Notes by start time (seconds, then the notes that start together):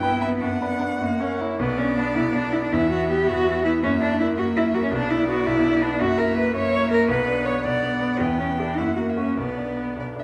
Already playing: G2 B3 E4
0.00 B3 E4 B4 G5
0.21 B3 E4 B4 E5
0.40 F#2 D4 F#5
0.61 B3 D4 B4
0.80 B3 D4 B4
1.00 F#2 A#3
1.19 A#3 C#4 C#5
1.39 A#3 C#4 E4 C#5
1.59 B1 B3 D5
1.78 C#4 D4
1.97 B3 D4
2.15 B1 E4
2.34 D4
2.53 B3 E4
2.63 D4
2.72 E2 B3 E4 E5
2.90 E4 F#4
3.09 B3 G4
3.27 E2 F#4
3.47 E4
3.65 B3 E4
3.83 F#2 A#3 C#4 E5
4.02 D4 E4
4.19 A#3 E4
4.37 F#2 A#3 F#4 E5
4.56 E4
4.74 A#3 F#4
4.83 C#4
4.91 B1 B3 D4 D5
5.09 D4 E4
5.27 B3 F#4
5.46 B1 E4
5.65 D4
5.82 B3 D4
5.99 F#2 A#3 F#4 E5
6.17 E4 A#4
6.35 A#3 B4
6.54 F#2 A#3 C#5 E5
6.71 E4
6.91 A#3 A#4
7.08 B1 B3 B4 F#5
7.27 D4
7.46 B3 C#5
7.64 B1 B3 D5 F#5
7.83 D4
8.01 B3
8.20 E2 B3 G5
8.39 B3 C#4
8.58 D4 E4 G4
8.78 F#2 A#3 E4 F#5
8.96 A#3 F#4
9.09 E5
9.17 C#4 F#4
9.37 B1 B3 D5
9.57 D4
9.77 B3
9.96 B1 D5
10.16 D4 E5